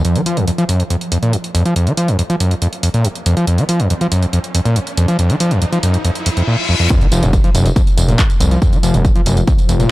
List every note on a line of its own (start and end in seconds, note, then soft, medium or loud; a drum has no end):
0.05 0.17 F2 medium
0.05 closed hi-hat medium
0.05 riser medium
0.15 0.21 F3 medium
0.15 closed hi-hat medium
0.26 0.38 F3 medium
0.26 open hi-hat loud
0.37 0.46 F2 medium
0.37 closed hi-hat medium
0.47 0.51 F2 medium
0.47 closed hi-hat medium
0.58 0.64 F3 loud
0.58 closed hi-hat medium
0.69 0.81 F#2 medium
0.69 open hi-hat loud
0.80 0.83 F2 medium
0.80 closed hi-hat medium
0.90 0.96 F2 medium
0.90 closed hi-hat medium
1.01 closed hi-hat medium
1.12 1.18 F2 medium
1.12 open hi-hat loud
1.23 1.35 A#2 loud
1.23 closed hi-hat medium
1.33 1.37 F2 medium
1.33 closed hi-hat medium
1.44 closed hi-hat medium
1.55 1.64 F2 loud
1.55 open hi-hat loud
1.65 1.74 F3 medium
1.65 closed hi-hat medium
1.76 1.88 F2 medium
1.76 closed hi-hat medium
1.87 1.93 F3 medium
1.87 closed hi-hat medium
1.97 2.10 F3 medium
1.97 open hi-hat loud
2.08 2.17 F2 medium
2.08 closed hi-hat medium
2.19 2.22 F2 medium
2.19 closed hi-hat medium
2.30 2.36 F3 loud
2.30 closed hi-hat medium
2.40 2.53 F#2 medium
2.40 open hi-hat loud
2.51 2.55 F2 medium
2.51 closed hi-hat medium
2.62 2.68 F2 medium
2.62 closed hi-hat medium
2.73 closed hi-hat medium
2.83 2.89 F2 medium
2.83 open hi-hat loud
2.94 3.06 A#2 loud
2.94 closed hi-hat medium
3.05 3.08 F2 medium
3.05 closed hi-hat medium
3.15 closed hi-hat medium
3.26 3.35 F2 loud
3.26 open hi-hat loud
3.37 3.46 F3 medium
3.37 closed hi-hat medium
3.47 3.60 F2 medium
3.47 closed hi-hat medium
3.58 3.64 F3 medium
3.58 closed hi-hat medium
3.69 3.81 F3 medium
3.69 open hi-hat loud
3.80 3.88 F2 medium
3.80 closed hi-hat medium
3.90 3.94 F2 medium
3.90 closed hi-hat medium
4.01 4.07 F3 loud
4.01 closed hi-hat medium
4.12 4.24 F#2 medium
4.12 open hi-hat loud
4.23 4.26 F2 medium
4.23 closed hi-hat medium
4.33 4.39 F2 medium
4.33 closed hi-hat medium
4.44 closed hi-hat medium
4.55 4.61 F2 medium
4.55 open hi-hat loud
4.65 4.78 A#2 loud
4.65 closed hi-hat medium
4.76 4.80 F2 medium
4.76 closed hi-hat medium
4.87 closed hi-hat medium
4.97 5.06 F2 loud
4.97 open hi-hat loud
5.08 5.17 F3 medium
5.08 closed hi-hat medium
5.19 5.31 F2 medium
5.19 closed hi-hat medium
5.30 5.36 F3 medium
5.30 closed hi-hat medium
5.40 5.53 F3 medium
5.40 open hi-hat loud
5.51 5.60 F2 medium
5.51 closed hi-hat medium
5.62 5.65 F2 medium
5.62 closed hi-hat medium
5.73 5.78 F3 loud
5.73 closed hi-hat medium
5.83 5.96 F#2 medium
5.83 open hi-hat loud
5.94 5.98 F2 medium
5.94 closed hi-hat medium
6.05 6.11 F2 medium
6.05 closed hi-hat medium
6.05 reverse cymbal medium
6.15 closed hi-hat medium
6.26 6.30 F2 medium
6.26 open hi-hat loud
6.37 6.43 F2 medium
6.37 closed hi-hat medium
6.47 6.56 A#2 medium
6.69 6.75 F2 medium
6.80 6.88 F2 loud
6.90 9.91 F3 medium
6.90 kick loud
6.90 closed hi-hat medium
6.90 tambourine soft
6.90 impact medium
7.01 7.07 F3 medium
7.01 closed hi-hat medium
7.12 7.20 F1 loud
7.12 7.24 F3 medium
7.12 open hi-hat loud
7.12 tambourine medium
7.23 7.38 F1 loud
7.23 7.31 F2 medium
7.23 closed hi-hat medium
7.23 tambourine soft
7.33 7.37 F2 medium
7.33 kick loud
7.33 closed hi-hat medium
7.33 tambourine soft
7.44 7.50 F3 loud
7.44 closed hi-hat medium
7.55 7.71 F1 loud
7.55 7.67 F#2 medium
7.55 open hi-hat loud
7.55 tambourine medium
7.66 7.69 F2 medium
7.66 closed hi-hat medium
7.66 tambourine soft
7.76 7.82 F2 medium
7.76 kick loud
7.76 closed hi-hat medium
7.76 tambourine soft
7.87 closed hi-hat medium
7.87 tambourine soft
7.97 8.13 F1 loud
7.97 8.03 F2 medium
7.97 open hi-hat loud
7.97 tambourine medium
8.08 8.20 A#2 loud
8.08 closed hi-hat medium
8.08 tambourine soft
8.19 8.22 F2 medium
8.19 kick loud
8.19 clap loud
8.19 closed hi-hat medium
8.19 tambourine soft
8.30 closed hi-hat medium
8.30 tambourine soft
8.40 8.56 C2 loud
8.40 8.49 F2 loud
8.40 open hi-hat loud
8.40 tambourine medium
8.51 8.60 F3 medium
8.51 closed hi-hat medium
8.51 tambourine soft
8.62 8.74 F2 medium
8.62 kick loud
8.62 closed hi-hat medium
8.62 tambourine soft
8.73 8.78 F3 medium
8.73 closed hi-hat medium
8.73 tambourine soft
8.83 8.91 F1 loud
8.83 8.96 F3 medium
8.83 open hi-hat loud
8.83 tambourine medium
8.94 9.10 F1 medium
8.94 9.03 F2 medium
8.94 closed hi-hat medium
8.94 tambourine soft
9.05 9.08 F2 medium
9.05 kick loud
9.05 closed hi-hat medium
9.05 tambourine soft
9.16 9.21 F3 loud
9.16 closed hi-hat medium
9.26 9.42 F1 loud
9.26 9.38 F#2 medium
9.26 open hi-hat loud
9.26 tambourine medium
9.37 9.40 F2 medium
9.37 closed hi-hat medium
9.37 tambourine soft
9.47 9.53 F2 medium
9.47 kick loud
9.47 closed hi-hat medium
9.47 tambourine soft
9.58 closed hi-hat medium
9.58 tambourine soft
9.69 9.85 F1 loud
9.69 9.75 F2 medium
9.69 open hi-hat loud
9.69 tambourine medium
9.80 9.91 A#2 loud
9.80 closed hi-hat medium
9.80 tambourine soft